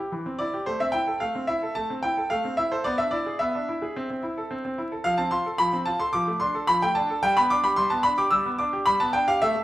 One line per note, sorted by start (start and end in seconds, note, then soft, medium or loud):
0.00 0.12 G4 soft
0.12 0.25 E3 soft
0.26 0.40 C4 soft
0.39 0.54 E4 soft
0.39 0.63 D5 medium
0.54 0.67 G4 soft
0.66 0.80 A3 medium
0.66 0.80 C5 medium
0.80 0.95 C4 soft
0.80 0.94 E5 medium
0.92 1.08 E4 soft
0.92 1.17 G5 medium
1.07 1.21 A4 soft
1.20 1.34 A3 soft
1.20 1.45 F5 medium
1.35 1.49 C4 soft
1.47 1.63 E4 soft
1.47 1.72 E5 medium
1.63 1.76 A4 soft
1.75 1.89 A3 soft
1.75 1.92 A5 medium
1.90 2.04 C4 soft
2.03 2.18 E4 soft
2.03 2.30 G5 medium
2.18 2.31 A4 soft
2.30 2.44 A3 medium
2.30 2.55 F5 medium
2.45 2.59 C4 soft
2.57 2.72 E4 soft
2.57 2.71 E5 medium
2.72 2.85 A4 soft
2.72 2.85 C5 medium
2.84 2.99 B3 medium
2.84 2.99 D5 medium
2.98 3.13 D4 soft
2.98 3.12 E5 medium
3.11 3.27 E4 soft
3.11 3.37 D5 medium
3.26 3.41 G#4 soft
3.39 3.54 B3 medium
3.39 4.50 E5 medium
3.55 3.69 D4 soft
3.69 3.83 E4 soft
3.82 3.96 G#4 soft
3.96 4.09 C4 medium
4.10 4.24 C4 soft
4.23 4.37 E4 soft
4.38 4.51 A4 soft
4.51 4.63 C4 medium
4.65 4.79 C4 soft
4.78 4.92 E4 soft
4.92 5.05 A4 soft
5.04 5.18 F3 medium
5.04 5.18 F5 medium
5.18 5.33 C4 soft
5.18 5.32 A5 medium
5.31 5.46 F4 soft
5.31 5.59 C6 medium
5.46 5.60 A4 soft
5.58 5.73 F3 medium
5.58 5.75 B5 loud
5.73 5.87 C4 soft
5.86 6.01 F4 medium
5.86 6.00 A5 medium
5.99 6.14 A4 soft
5.99 6.14 C6 medium
6.13 6.27 F3 medium
6.13 6.38 D6 medium
6.27 6.42 A3 soft
6.40 6.56 D4 medium
6.40 6.65 C6 medium
6.54 6.69 A4 medium
6.67 6.82 F3 medium
6.67 6.82 B5 loud
6.82 6.97 A3 soft
6.82 6.96 G5 medium
6.95 7.10 D4 soft
6.95 7.20 A5 medium
7.10 7.24 A4 medium
7.23 7.37 G3 medium
7.23 7.37 G5 loud
7.37 7.51 B3 medium
7.37 7.50 B5 medium
7.50 7.65 D4 medium
7.50 7.64 D6 loud
7.64 7.78 G4 soft
7.64 7.78 B5 medium
7.76 7.91 G3 medium
7.76 7.91 C6 loud
7.90 8.05 B3 medium
7.90 8.04 A5 medium
8.03 8.19 D4 medium
8.03 8.18 B5 medium
8.18 8.33 G4 medium
8.18 8.32 D6 medium
8.30 8.45 G3 medium
8.30 8.56 E6 loud
8.46 8.60 B3 soft
8.58 8.74 D4 medium
8.58 8.84 D6 medium
8.73 8.87 G4 medium
8.86 9.00 G3 medium
8.86 9.00 B5 loud
9.00 9.15 B3 medium
9.00 9.14 A5 medium
9.13 9.29 D4 soft
9.13 9.27 G5 medium
9.28 9.42 G4 medium
9.28 9.41 F5 medium
9.42 9.54 A3 medium
9.42 9.58 E5 medium
9.56 9.64 A3 soft